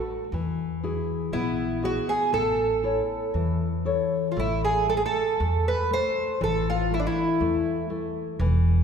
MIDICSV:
0, 0, Header, 1, 4, 480
1, 0, Start_track
1, 0, Key_signature, 3, "major"
1, 0, Tempo, 1003344
1, 157, Time_signature, 2, 2, 24, 8
1, 1599, Tempo, 1022147
1, 2083, Key_signature, 0, "minor"
1, 3039, Tempo, 991736
1, 4213, End_track
2, 0, Start_track
2, 0, Title_t, "Twelve-string acoustic guitar"
2, 0, Program_c, 0, 25
2, 637, Note_on_c, 0, 64, 75
2, 883, Note_off_c, 0, 64, 0
2, 885, Note_on_c, 0, 66, 77
2, 1001, Note_on_c, 0, 68, 83
2, 1004, Note_off_c, 0, 66, 0
2, 1116, Note_off_c, 0, 68, 0
2, 1118, Note_on_c, 0, 69, 84
2, 1582, Note_off_c, 0, 69, 0
2, 2056, Note_on_c, 0, 65, 51
2, 2084, Note_off_c, 0, 65, 0
2, 2093, Note_on_c, 0, 64, 71
2, 2201, Note_off_c, 0, 64, 0
2, 2211, Note_on_c, 0, 68, 72
2, 2326, Note_off_c, 0, 68, 0
2, 2328, Note_on_c, 0, 69, 85
2, 2361, Note_off_c, 0, 69, 0
2, 2363, Note_on_c, 0, 68, 71
2, 2394, Note_off_c, 0, 68, 0
2, 2404, Note_on_c, 0, 69, 83
2, 2695, Note_off_c, 0, 69, 0
2, 2697, Note_on_c, 0, 71, 81
2, 2813, Note_off_c, 0, 71, 0
2, 2816, Note_on_c, 0, 72, 97
2, 3050, Note_off_c, 0, 72, 0
2, 3052, Note_on_c, 0, 69, 83
2, 3170, Note_off_c, 0, 69, 0
2, 3178, Note_on_c, 0, 65, 75
2, 3294, Note_off_c, 0, 65, 0
2, 3295, Note_on_c, 0, 64, 70
2, 3320, Note_off_c, 0, 64, 0
2, 3322, Note_on_c, 0, 62, 61
2, 3352, Note_off_c, 0, 62, 0
2, 3357, Note_on_c, 0, 64, 77
2, 3749, Note_off_c, 0, 64, 0
2, 4213, End_track
3, 0, Start_track
3, 0, Title_t, "Nylon-string guitar"
3, 0, Program_c, 1, 24
3, 0, Note_on_c, 1, 57, 44
3, 0, Note_on_c, 1, 62, 39
3, 0, Note_on_c, 1, 66, 48
3, 112, Note_off_c, 1, 57, 0
3, 113, Note_off_c, 1, 62, 0
3, 114, Note_off_c, 1, 66, 0
3, 160, Note_on_c, 1, 52, 59
3, 400, Note_on_c, 1, 64, 42
3, 400, Note_on_c, 1, 66, 39
3, 403, Note_on_c, 1, 68, 45
3, 622, Note_off_c, 1, 52, 0
3, 640, Note_on_c, 1, 59, 60
3, 781, Note_off_c, 1, 64, 0
3, 782, Note_off_c, 1, 66, 0
3, 784, Note_off_c, 1, 68, 0
3, 874, Note_on_c, 1, 64, 45
3, 877, Note_on_c, 1, 66, 41
3, 878, Note_on_c, 1, 68, 48
3, 1066, Note_off_c, 1, 64, 0
3, 1068, Note_off_c, 1, 66, 0
3, 1069, Note_off_c, 1, 68, 0
3, 1104, Note_off_c, 1, 59, 0
3, 1113, Note_on_c, 1, 57, 56
3, 1355, Note_on_c, 1, 64, 41
3, 1358, Note_on_c, 1, 69, 37
3, 1361, Note_on_c, 1, 73, 46
3, 1584, Note_off_c, 1, 57, 0
3, 1601, Note_on_c, 1, 52, 53
3, 1743, Note_off_c, 1, 64, 0
3, 1745, Note_off_c, 1, 69, 0
3, 1746, Note_off_c, 1, 73, 0
3, 1837, Note_on_c, 1, 64, 39
3, 1840, Note_on_c, 1, 69, 36
3, 1842, Note_on_c, 1, 73, 46
3, 2033, Note_off_c, 1, 64, 0
3, 2033, Note_off_c, 1, 69, 0
3, 2035, Note_off_c, 1, 73, 0
3, 2069, Note_off_c, 1, 52, 0
3, 2082, Note_on_c, 1, 57, 60
3, 2320, Note_off_c, 1, 57, 0
3, 2326, Note_on_c, 1, 57, 46
3, 2558, Note_off_c, 1, 57, 0
3, 2564, Note_on_c, 1, 57, 48
3, 2795, Note_off_c, 1, 57, 0
3, 2803, Note_on_c, 1, 57, 52
3, 3032, Note_off_c, 1, 57, 0
3, 3038, Note_on_c, 1, 52, 65
3, 3282, Note_on_c, 1, 57, 46
3, 3517, Note_off_c, 1, 57, 0
3, 3523, Note_on_c, 1, 57, 54
3, 3755, Note_off_c, 1, 57, 0
3, 3761, Note_on_c, 1, 57, 51
3, 3983, Note_off_c, 1, 52, 0
3, 3994, Note_off_c, 1, 57, 0
3, 4005, Note_on_c, 1, 52, 64
3, 4213, Note_off_c, 1, 52, 0
3, 4213, End_track
4, 0, Start_track
4, 0, Title_t, "Upright bass"
4, 0, Program_c, 2, 32
4, 153, Note_on_c, 2, 40, 78
4, 465, Note_off_c, 2, 40, 0
4, 634, Note_on_c, 2, 34, 76
4, 947, Note_off_c, 2, 34, 0
4, 1113, Note_on_c, 2, 33, 85
4, 1429, Note_off_c, 2, 33, 0
4, 1597, Note_on_c, 2, 40, 73
4, 1912, Note_off_c, 2, 40, 0
4, 2079, Note_on_c, 2, 33, 83
4, 2394, Note_off_c, 2, 33, 0
4, 2565, Note_on_c, 2, 40, 84
4, 2720, Note_off_c, 2, 40, 0
4, 3039, Note_on_c, 2, 33, 87
4, 3354, Note_off_c, 2, 33, 0
4, 3520, Note_on_c, 2, 40, 84
4, 3678, Note_off_c, 2, 40, 0
4, 4000, Note_on_c, 2, 28, 97
4, 4213, Note_off_c, 2, 28, 0
4, 4213, End_track
0, 0, End_of_file